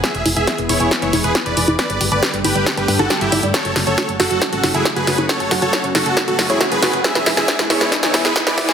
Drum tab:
HH |xxoxxxoxxxoxxxox|xxoxxxoxxxoxxxox|xxoxxxoxxxoxxxox|xxoxxxoxxxoxxxox|
SD |o---o---o---o---|o---o---o---o---|o-o-o-o-o-o-o-o-|o-o-o-o-o-o-o-o-|
CG |----------o----o|------o----o--o-|----------o----o|------o-------o-|
BD |o---o---o---o---|o---o---o-o-o---|o---o---o---o---|o---o---o-o-o---|

HH |xxoxxxo-xxoxxxo-|
SD |oooooooooooooooo|
CG |----------o----o|
BD |o---o---o---o---|